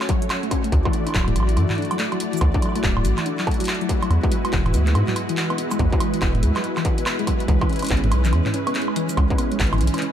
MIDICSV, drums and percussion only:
0, 0, Header, 1, 2, 480
1, 0, Start_track
1, 0, Tempo, 422535
1, 822, Time_signature, 4, 2, 24, 8
1, 11497, End_track
2, 0, Start_track
2, 0, Title_t, "Drums"
2, 11, Note_on_c, 9, 39, 67
2, 11, Note_on_c, 9, 42, 29
2, 11, Note_on_c, 9, 76, 55
2, 101, Note_off_c, 9, 42, 0
2, 101, Note_on_c, 9, 42, 96
2, 102, Note_on_c, 9, 36, 108
2, 125, Note_off_c, 9, 39, 0
2, 125, Note_off_c, 9, 76, 0
2, 214, Note_off_c, 9, 42, 0
2, 216, Note_off_c, 9, 36, 0
2, 251, Note_on_c, 9, 42, 57
2, 342, Note_off_c, 9, 42, 0
2, 342, Note_on_c, 9, 39, 123
2, 342, Note_on_c, 9, 42, 57
2, 342, Note_on_c, 9, 76, 80
2, 456, Note_off_c, 9, 39, 0
2, 456, Note_off_c, 9, 42, 0
2, 456, Note_off_c, 9, 76, 0
2, 491, Note_on_c, 9, 42, 27
2, 582, Note_off_c, 9, 42, 0
2, 582, Note_on_c, 9, 36, 84
2, 582, Note_on_c, 9, 42, 100
2, 582, Note_on_c, 9, 76, 55
2, 695, Note_off_c, 9, 36, 0
2, 696, Note_off_c, 9, 42, 0
2, 696, Note_off_c, 9, 76, 0
2, 730, Note_on_c, 9, 42, 55
2, 822, Note_off_c, 9, 42, 0
2, 822, Note_on_c, 9, 36, 110
2, 822, Note_on_c, 9, 42, 54
2, 935, Note_off_c, 9, 36, 0
2, 936, Note_off_c, 9, 42, 0
2, 970, Note_on_c, 9, 36, 121
2, 971, Note_on_c, 9, 76, 76
2, 1061, Note_on_c, 9, 42, 93
2, 1084, Note_off_c, 9, 36, 0
2, 1084, Note_off_c, 9, 76, 0
2, 1174, Note_off_c, 9, 42, 0
2, 1211, Note_on_c, 9, 42, 55
2, 1211, Note_on_c, 9, 76, 24
2, 1233, Note_off_c, 9, 76, 0
2, 1233, Note_on_c, 9, 76, 27
2, 1256, Note_off_c, 9, 76, 0
2, 1256, Note_on_c, 9, 76, 30
2, 1278, Note_off_c, 9, 76, 0
2, 1278, Note_on_c, 9, 76, 34
2, 1301, Note_off_c, 9, 42, 0
2, 1301, Note_off_c, 9, 76, 0
2, 1301, Note_on_c, 9, 39, 127
2, 1301, Note_on_c, 9, 42, 56
2, 1301, Note_on_c, 9, 76, 36
2, 1302, Note_on_c, 9, 36, 110
2, 1339, Note_off_c, 9, 76, 0
2, 1339, Note_on_c, 9, 76, 39
2, 1377, Note_off_c, 9, 76, 0
2, 1377, Note_on_c, 9, 76, 43
2, 1414, Note_off_c, 9, 76, 0
2, 1414, Note_on_c, 9, 76, 46
2, 1415, Note_off_c, 9, 36, 0
2, 1415, Note_off_c, 9, 39, 0
2, 1415, Note_off_c, 9, 42, 0
2, 1451, Note_on_c, 9, 42, 29
2, 1451, Note_on_c, 9, 45, 93
2, 1528, Note_off_c, 9, 76, 0
2, 1542, Note_off_c, 9, 42, 0
2, 1542, Note_on_c, 9, 42, 91
2, 1542, Note_on_c, 9, 76, 33
2, 1565, Note_off_c, 9, 45, 0
2, 1592, Note_off_c, 9, 76, 0
2, 1592, Note_on_c, 9, 76, 47
2, 1622, Note_off_c, 9, 76, 0
2, 1622, Note_on_c, 9, 76, 59
2, 1656, Note_off_c, 9, 42, 0
2, 1690, Note_on_c, 9, 42, 55
2, 1735, Note_off_c, 9, 76, 0
2, 1782, Note_off_c, 9, 42, 0
2, 1782, Note_on_c, 9, 42, 56
2, 1782, Note_on_c, 9, 76, 51
2, 1895, Note_off_c, 9, 42, 0
2, 1895, Note_off_c, 9, 76, 0
2, 1930, Note_on_c, 9, 39, 67
2, 1930, Note_on_c, 9, 42, 13
2, 1930, Note_on_c, 9, 45, 83
2, 1940, Note_off_c, 9, 42, 0
2, 1940, Note_on_c, 9, 42, 15
2, 1990, Note_off_c, 9, 42, 0
2, 1990, Note_on_c, 9, 42, 17
2, 2021, Note_off_c, 9, 42, 0
2, 2021, Note_on_c, 9, 42, 20
2, 2044, Note_off_c, 9, 39, 0
2, 2044, Note_off_c, 9, 45, 0
2, 2070, Note_off_c, 9, 42, 0
2, 2070, Note_on_c, 9, 42, 21
2, 2100, Note_off_c, 9, 42, 0
2, 2100, Note_on_c, 9, 42, 24
2, 2169, Note_off_c, 9, 42, 0
2, 2169, Note_on_c, 9, 42, 58
2, 2169, Note_on_c, 9, 76, 80
2, 2261, Note_off_c, 9, 42, 0
2, 2261, Note_on_c, 9, 39, 126
2, 2261, Note_on_c, 9, 42, 54
2, 2283, Note_off_c, 9, 76, 0
2, 2374, Note_off_c, 9, 39, 0
2, 2374, Note_off_c, 9, 42, 0
2, 2409, Note_on_c, 9, 42, 27
2, 2409, Note_on_c, 9, 76, 51
2, 2501, Note_off_c, 9, 42, 0
2, 2501, Note_on_c, 9, 42, 96
2, 2522, Note_off_c, 9, 76, 0
2, 2614, Note_off_c, 9, 42, 0
2, 2649, Note_on_c, 9, 42, 55
2, 2695, Note_on_c, 9, 69, 77
2, 2740, Note_off_c, 9, 42, 0
2, 2740, Note_on_c, 9, 42, 52
2, 2740, Note_on_c, 9, 76, 77
2, 2742, Note_on_c, 9, 36, 112
2, 2809, Note_off_c, 9, 69, 0
2, 2853, Note_off_c, 9, 42, 0
2, 2853, Note_off_c, 9, 76, 0
2, 2855, Note_off_c, 9, 36, 0
2, 2889, Note_on_c, 9, 42, 25
2, 2890, Note_on_c, 9, 36, 123
2, 2980, Note_off_c, 9, 42, 0
2, 2980, Note_on_c, 9, 42, 90
2, 2980, Note_on_c, 9, 76, 49
2, 3004, Note_off_c, 9, 36, 0
2, 3018, Note_off_c, 9, 76, 0
2, 3018, Note_on_c, 9, 76, 39
2, 3054, Note_off_c, 9, 76, 0
2, 3054, Note_on_c, 9, 76, 33
2, 3092, Note_off_c, 9, 76, 0
2, 3092, Note_on_c, 9, 76, 27
2, 3094, Note_off_c, 9, 42, 0
2, 3130, Note_off_c, 9, 76, 0
2, 3130, Note_on_c, 9, 42, 54
2, 3130, Note_on_c, 9, 76, 22
2, 3152, Note_off_c, 9, 76, 0
2, 3152, Note_on_c, 9, 76, 18
2, 3176, Note_off_c, 9, 76, 0
2, 3176, Note_on_c, 9, 76, 15
2, 3221, Note_off_c, 9, 42, 0
2, 3221, Note_on_c, 9, 39, 123
2, 3221, Note_on_c, 9, 42, 52
2, 3222, Note_on_c, 9, 36, 110
2, 3289, Note_off_c, 9, 76, 0
2, 3335, Note_off_c, 9, 36, 0
2, 3335, Note_off_c, 9, 39, 0
2, 3335, Note_off_c, 9, 42, 0
2, 3370, Note_on_c, 9, 45, 93
2, 3370, Note_on_c, 9, 76, 77
2, 3462, Note_on_c, 9, 42, 90
2, 3462, Note_on_c, 9, 69, 60
2, 3484, Note_off_c, 9, 45, 0
2, 3484, Note_off_c, 9, 76, 0
2, 3575, Note_off_c, 9, 42, 0
2, 3575, Note_off_c, 9, 69, 0
2, 3610, Note_on_c, 9, 39, 65
2, 3610, Note_on_c, 9, 42, 54
2, 3610, Note_on_c, 9, 76, 51
2, 3702, Note_off_c, 9, 42, 0
2, 3702, Note_on_c, 9, 42, 51
2, 3724, Note_off_c, 9, 39, 0
2, 3724, Note_off_c, 9, 76, 0
2, 3816, Note_off_c, 9, 42, 0
2, 3851, Note_on_c, 9, 39, 64
2, 3851, Note_on_c, 9, 42, 26
2, 3942, Note_on_c, 9, 36, 106
2, 3943, Note_off_c, 9, 42, 0
2, 3943, Note_on_c, 9, 42, 40
2, 3943, Note_on_c, 9, 76, 76
2, 3965, Note_off_c, 9, 39, 0
2, 3992, Note_off_c, 9, 42, 0
2, 3992, Note_on_c, 9, 42, 49
2, 4022, Note_off_c, 9, 42, 0
2, 4022, Note_on_c, 9, 42, 57
2, 4056, Note_off_c, 9, 36, 0
2, 4057, Note_off_c, 9, 76, 0
2, 4092, Note_off_c, 9, 42, 0
2, 4092, Note_on_c, 9, 42, 66
2, 4102, Note_off_c, 9, 42, 0
2, 4102, Note_on_c, 9, 42, 72
2, 4136, Note_off_c, 9, 42, 0
2, 4136, Note_on_c, 9, 42, 42
2, 4150, Note_off_c, 9, 42, 0
2, 4150, Note_on_c, 9, 42, 85
2, 4182, Note_off_c, 9, 42, 0
2, 4182, Note_on_c, 9, 39, 127
2, 4182, Note_on_c, 9, 42, 53
2, 4182, Note_on_c, 9, 76, 51
2, 4256, Note_off_c, 9, 42, 0
2, 4256, Note_on_c, 9, 42, 28
2, 4295, Note_off_c, 9, 39, 0
2, 4295, Note_off_c, 9, 76, 0
2, 4331, Note_off_c, 9, 42, 0
2, 4331, Note_on_c, 9, 42, 26
2, 4422, Note_on_c, 9, 36, 85
2, 4423, Note_off_c, 9, 42, 0
2, 4423, Note_on_c, 9, 42, 91
2, 4536, Note_off_c, 9, 36, 0
2, 4536, Note_off_c, 9, 42, 0
2, 4573, Note_on_c, 9, 42, 53
2, 4573, Note_on_c, 9, 76, 75
2, 4664, Note_off_c, 9, 42, 0
2, 4664, Note_off_c, 9, 76, 0
2, 4664, Note_on_c, 9, 42, 50
2, 4664, Note_on_c, 9, 76, 51
2, 4778, Note_off_c, 9, 42, 0
2, 4778, Note_off_c, 9, 76, 0
2, 4811, Note_on_c, 9, 36, 119
2, 4812, Note_on_c, 9, 42, 26
2, 4903, Note_off_c, 9, 42, 0
2, 4903, Note_on_c, 9, 42, 89
2, 4925, Note_off_c, 9, 36, 0
2, 5016, Note_off_c, 9, 42, 0
2, 5052, Note_on_c, 9, 42, 52
2, 5052, Note_on_c, 9, 76, 78
2, 5142, Note_on_c, 9, 36, 107
2, 5143, Note_off_c, 9, 42, 0
2, 5143, Note_on_c, 9, 39, 120
2, 5143, Note_on_c, 9, 42, 52
2, 5166, Note_off_c, 9, 76, 0
2, 5256, Note_off_c, 9, 36, 0
2, 5257, Note_off_c, 9, 39, 0
2, 5257, Note_off_c, 9, 42, 0
2, 5292, Note_on_c, 9, 42, 26
2, 5292, Note_on_c, 9, 45, 95
2, 5292, Note_on_c, 9, 76, 52
2, 5384, Note_off_c, 9, 42, 0
2, 5384, Note_on_c, 9, 42, 85
2, 5384, Note_on_c, 9, 69, 64
2, 5406, Note_off_c, 9, 45, 0
2, 5406, Note_off_c, 9, 76, 0
2, 5497, Note_off_c, 9, 42, 0
2, 5497, Note_off_c, 9, 69, 0
2, 5532, Note_on_c, 9, 39, 61
2, 5532, Note_on_c, 9, 42, 50
2, 5624, Note_off_c, 9, 42, 0
2, 5624, Note_on_c, 9, 42, 51
2, 5624, Note_on_c, 9, 76, 78
2, 5646, Note_off_c, 9, 39, 0
2, 5738, Note_off_c, 9, 42, 0
2, 5738, Note_off_c, 9, 76, 0
2, 5772, Note_on_c, 9, 39, 64
2, 5772, Note_on_c, 9, 42, 26
2, 5772, Note_on_c, 9, 45, 86
2, 5863, Note_off_c, 9, 42, 0
2, 5863, Note_on_c, 9, 42, 91
2, 5863, Note_on_c, 9, 76, 51
2, 5886, Note_off_c, 9, 39, 0
2, 5886, Note_off_c, 9, 45, 0
2, 5977, Note_off_c, 9, 42, 0
2, 5977, Note_off_c, 9, 76, 0
2, 6011, Note_on_c, 9, 42, 52
2, 6102, Note_off_c, 9, 42, 0
2, 6102, Note_on_c, 9, 39, 120
2, 6102, Note_on_c, 9, 42, 53
2, 6216, Note_off_c, 9, 39, 0
2, 6216, Note_off_c, 9, 42, 0
2, 6250, Note_on_c, 9, 42, 26
2, 6250, Note_on_c, 9, 76, 74
2, 6342, Note_off_c, 9, 42, 0
2, 6342, Note_on_c, 9, 42, 91
2, 6364, Note_off_c, 9, 76, 0
2, 6455, Note_off_c, 9, 42, 0
2, 6491, Note_on_c, 9, 42, 50
2, 6491, Note_on_c, 9, 69, 83
2, 6491, Note_on_c, 9, 76, 52
2, 6582, Note_off_c, 9, 42, 0
2, 6582, Note_on_c, 9, 36, 103
2, 6582, Note_on_c, 9, 42, 51
2, 6604, Note_off_c, 9, 69, 0
2, 6604, Note_off_c, 9, 76, 0
2, 6695, Note_off_c, 9, 42, 0
2, 6696, Note_off_c, 9, 36, 0
2, 6731, Note_on_c, 9, 36, 113
2, 6731, Note_on_c, 9, 42, 25
2, 6821, Note_off_c, 9, 42, 0
2, 6821, Note_on_c, 9, 42, 91
2, 6821, Note_on_c, 9, 76, 79
2, 6845, Note_off_c, 9, 36, 0
2, 6935, Note_off_c, 9, 42, 0
2, 6935, Note_off_c, 9, 76, 0
2, 6970, Note_on_c, 9, 42, 52
2, 7062, Note_off_c, 9, 42, 0
2, 7062, Note_on_c, 9, 36, 102
2, 7062, Note_on_c, 9, 39, 120
2, 7062, Note_on_c, 9, 42, 51
2, 7062, Note_on_c, 9, 76, 54
2, 7176, Note_off_c, 9, 36, 0
2, 7176, Note_off_c, 9, 39, 0
2, 7176, Note_off_c, 9, 42, 0
2, 7176, Note_off_c, 9, 76, 0
2, 7212, Note_on_c, 9, 42, 26
2, 7212, Note_on_c, 9, 45, 98
2, 7302, Note_off_c, 9, 42, 0
2, 7302, Note_on_c, 9, 42, 87
2, 7325, Note_off_c, 9, 45, 0
2, 7416, Note_off_c, 9, 42, 0
2, 7451, Note_on_c, 9, 39, 60
2, 7451, Note_on_c, 9, 42, 49
2, 7451, Note_on_c, 9, 76, 77
2, 7542, Note_off_c, 9, 42, 0
2, 7542, Note_on_c, 9, 42, 51
2, 7565, Note_off_c, 9, 39, 0
2, 7565, Note_off_c, 9, 76, 0
2, 7656, Note_off_c, 9, 42, 0
2, 7689, Note_on_c, 9, 39, 62
2, 7689, Note_on_c, 9, 42, 27
2, 7689, Note_on_c, 9, 76, 55
2, 7781, Note_off_c, 9, 42, 0
2, 7781, Note_on_c, 9, 42, 90
2, 7782, Note_on_c, 9, 36, 102
2, 7803, Note_off_c, 9, 39, 0
2, 7803, Note_off_c, 9, 76, 0
2, 7894, Note_off_c, 9, 42, 0
2, 7896, Note_off_c, 9, 36, 0
2, 7929, Note_on_c, 9, 42, 53
2, 8021, Note_off_c, 9, 42, 0
2, 8021, Note_on_c, 9, 39, 120
2, 8021, Note_on_c, 9, 42, 53
2, 8021, Note_on_c, 9, 76, 78
2, 8135, Note_off_c, 9, 39, 0
2, 8135, Note_off_c, 9, 42, 0
2, 8135, Note_off_c, 9, 76, 0
2, 8170, Note_on_c, 9, 42, 26
2, 8262, Note_off_c, 9, 42, 0
2, 8262, Note_on_c, 9, 36, 81
2, 8262, Note_on_c, 9, 42, 91
2, 8262, Note_on_c, 9, 76, 52
2, 8375, Note_off_c, 9, 36, 0
2, 8375, Note_off_c, 9, 42, 0
2, 8375, Note_off_c, 9, 76, 0
2, 8410, Note_on_c, 9, 42, 51
2, 8501, Note_on_c, 9, 36, 101
2, 8502, Note_off_c, 9, 42, 0
2, 8502, Note_on_c, 9, 42, 52
2, 8615, Note_off_c, 9, 36, 0
2, 8615, Note_off_c, 9, 42, 0
2, 8650, Note_on_c, 9, 36, 110
2, 8651, Note_on_c, 9, 42, 25
2, 8651, Note_on_c, 9, 76, 81
2, 8742, Note_off_c, 9, 42, 0
2, 8742, Note_on_c, 9, 42, 41
2, 8764, Note_off_c, 9, 36, 0
2, 8765, Note_off_c, 9, 76, 0
2, 8777, Note_off_c, 9, 42, 0
2, 8777, Note_on_c, 9, 42, 48
2, 8815, Note_off_c, 9, 42, 0
2, 8815, Note_on_c, 9, 42, 53
2, 8852, Note_off_c, 9, 42, 0
2, 8852, Note_on_c, 9, 42, 57
2, 8889, Note_off_c, 9, 42, 0
2, 8889, Note_on_c, 9, 42, 65
2, 8889, Note_on_c, 9, 76, 57
2, 8912, Note_off_c, 9, 42, 0
2, 8912, Note_on_c, 9, 42, 71
2, 8935, Note_off_c, 9, 42, 0
2, 8935, Note_on_c, 9, 42, 77
2, 8958, Note_off_c, 9, 42, 0
2, 8958, Note_on_c, 9, 42, 85
2, 8981, Note_on_c, 9, 36, 102
2, 8981, Note_on_c, 9, 39, 113
2, 9003, Note_off_c, 9, 76, 0
2, 9055, Note_off_c, 9, 42, 0
2, 9055, Note_on_c, 9, 42, 44
2, 9094, Note_off_c, 9, 36, 0
2, 9094, Note_off_c, 9, 39, 0
2, 9130, Note_off_c, 9, 42, 0
2, 9130, Note_on_c, 9, 42, 26
2, 9130, Note_on_c, 9, 45, 98
2, 9219, Note_off_c, 9, 42, 0
2, 9219, Note_on_c, 9, 42, 88
2, 9219, Note_on_c, 9, 76, 80
2, 9243, Note_off_c, 9, 45, 0
2, 9333, Note_off_c, 9, 42, 0
2, 9333, Note_off_c, 9, 76, 0
2, 9369, Note_on_c, 9, 39, 60
2, 9369, Note_on_c, 9, 42, 54
2, 9369, Note_on_c, 9, 69, 64
2, 9460, Note_off_c, 9, 42, 0
2, 9460, Note_on_c, 9, 42, 53
2, 9460, Note_on_c, 9, 76, 56
2, 9482, Note_off_c, 9, 39, 0
2, 9482, Note_off_c, 9, 69, 0
2, 9573, Note_off_c, 9, 42, 0
2, 9573, Note_off_c, 9, 76, 0
2, 9609, Note_on_c, 9, 39, 63
2, 9609, Note_on_c, 9, 42, 26
2, 9609, Note_on_c, 9, 45, 93
2, 9700, Note_off_c, 9, 42, 0
2, 9700, Note_on_c, 9, 42, 91
2, 9723, Note_off_c, 9, 39, 0
2, 9723, Note_off_c, 9, 45, 0
2, 9813, Note_off_c, 9, 42, 0
2, 9848, Note_on_c, 9, 42, 54
2, 9848, Note_on_c, 9, 76, 86
2, 9939, Note_off_c, 9, 42, 0
2, 9939, Note_on_c, 9, 39, 111
2, 9939, Note_on_c, 9, 42, 54
2, 9962, Note_off_c, 9, 76, 0
2, 10015, Note_off_c, 9, 42, 0
2, 10015, Note_on_c, 9, 42, 26
2, 10053, Note_off_c, 9, 39, 0
2, 10089, Note_on_c, 9, 76, 56
2, 10128, Note_off_c, 9, 42, 0
2, 10180, Note_on_c, 9, 42, 92
2, 10203, Note_off_c, 9, 76, 0
2, 10294, Note_off_c, 9, 42, 0
2, 10329, Note_on_c, 9, 42, 53
2, 10329, Note_on_c, 9, 69, 82
2, 10421, Note_off_c, 9, 42, 0
2, 10421, Note_on_c, 9, 36, 103
2, 10421, Note_on_c, 9, 42, 54
2, 10421, Note_on_c, 9, 76, 86
2, 10443, Note_off_c, 9, 69, 0
2, 10534, Note_off_c, 9, 36, 0
2, 10534, Note_off_c, 9, 42, 0
2, 10534, Note_off_c, 9, 76, 0
2, 10570, Note_on_c, 9, 36, 116
2, 10570, Note_on_c, 9, 42, 26
2, 10660, Note_off_c, 9, 42, 0
2, 10660, Note_on_c, 9, 42, 94
2, 10660, Note_on_c, 9, 76, 57
2, 10683, Note_off_c, 9, 36, 0
2, 10774, Note_off_c, 9, 42, 0
2, 10774, Note_off_c, 9, 76, 0
2, 10810, Note_on_c, 9, 42, 57
2, 10901, Note_on_c, 9, 36, 104
2, 10902, Note_off_c, 9, 42, 0
2, 10902, Note_on_c, 9, 39, 122
2, 10902, Note_on_c, 9, 42, 52
2, 10951, Note_off_c, 9, 42, 0
2, 10951, Note_on_c, 9, 42, 43
2, 10983, Note_off_c, 9, 42, 0
2, 10983, Note_on_c, 9, 42, 36
2, 11015, Note_off_c, 9, 36, 0
2, 11015, Note_off_c, 9, 39, 0
2, 11050, Note_off_c, 9, 42, 0
2, 11050, Note_on_c, 9, 42, 28
2, 11050, Note_on_c, 9, 45, 96
2, 11050, Note_on_c, 9, 76, 86
2, 11061, Note_off_c, 9, 42, 0
2, 11061, Note_on_c, 9, 42, 23
2, 11111, Note_off_c, 9, 42, 0
2, 11111, Note_on_c, 9, 42, 19
2, 11141, Note_off_c, 9, 42, 0
2, 11141, Note_on_c, 9, 42, 89
2, 11163, Note_off_c, 9, 45, 0
2, 11163, Note_off_c, 9, 76, 0
2, 11217, Note_off_c, 9, 42, 0
2, 11217, Note_on_c, 9, 42, 73
2, 11292, Note_off_c, 9, 42, 0
2, 11292, Note_on_c, 9, 42, 60
2, 11292, Note_on_c, 9, 76, 55
2, 11337, Note_off_c, 9, 42, 0
2, 11337, Note_on_c, 9, 39, 59
2, 11337, Note_on_c, 9, 42, 49
2, 11382, Note_off_c, 9, 42, 0
2, 11382, Note_on_c, 9, 42, 55
2, 11405, Note_off_c, 9, 76, 0
2, 11450, Note_off_c, 9, 39, 0
2, 11496, Note_off_c, 9, 42, 0
2, 11497, End_track
0, 0, End_of_file